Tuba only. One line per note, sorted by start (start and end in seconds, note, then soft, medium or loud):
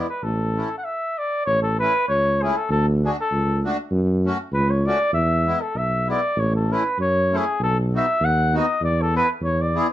0.23 0.63 A1 medium
1.47 1.87 A1 medium
2.09 2.49 C#2 medium
2.69 3.09 D2 loud
3.31 3.71 C#2 medium
3.91 4.31 F#2 loud
4.52 4.91 C#2 loud
5.12 5.52 E2 loud
5.75 6.15 B1 medium
6.36 6.76 A1 loud
6.98 7.38 F#2 medium
7.60 7.99 B1 loud
8.20 8.60 D#2 loud
8.81 9.20 E2 loud
9.41 9.80 E2 medium